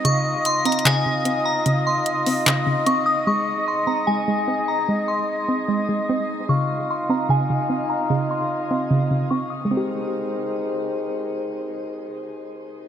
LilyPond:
<<
  \new Staff \with { instrumentName = "Synth bell" } { \time 4/4 \key aes \major \tempo 4 = 149 des'''4 c'''8 bes''8 aes''4. bes''8 | r8 c'''2~ c'''8 des'''8 ees'''8 | des'''4 c'''8 bes''8 aes''4. bes''8 | r8 c'''2~ c'''8 r4 |
des'''4 c'''8 bes''8 aes''4. bes''8 | r8 c'''2~ c'''8 des'''8 ees'''8 | ees'''2. r4 | r1 | }
  \new Staff \with { instrumentName = "Woodwind section" } { \time 4/4 \key aes \major << { <f' f''>1~ | <f' f''>1 | aes'1~ | aes'1 |
<f' f''>1~ | <f' f''>1 | <aes ees' g' bes' c''>1~ | <aes ees' g' bes' c''>1 | } \\ { <ees' ees''>1~ | <ees' ees''>1~ | <ees' ees''>1~ | <ees' ees''>1 |
<ees' ees''>1~ | <ees' ees''>1 | r1 | r1 | } >> }
  \new Staff \with { instrumentName = "Synth pluck" } { \clef bass \time 4/4 \key aes \major des4. c'8 des8 des8 c'4 | des4. c'8 des8 des8 c'4 | aes4. c'8 aes8 aes8 c'4 | aes4. c'8 aes8 aes8 c'4 |
des4. c'8 des8 des8 c'4 | des4. c'8 des8 des8 c'4 | <aes c' g'>1~ | <aes c' g'>1 | }
  \new DrumStaff \with { instrumentName = "Drums" } \drummode { \time 4/4 hh4 \tuplet 3/2 { hh16 r16 r16 hh16 hh16 hh16 } <hc hh>4 hh4 | hh4 hh8 hho8 <hc hh>4 hh4 | r4 r4 r4 r4 | r4 r4 r4 r4 |
r4 r4 r4 r4 | r4 r4 r4 r4 | r4 r4 r4 r4 | r4 r4 r4 r4 | }
>>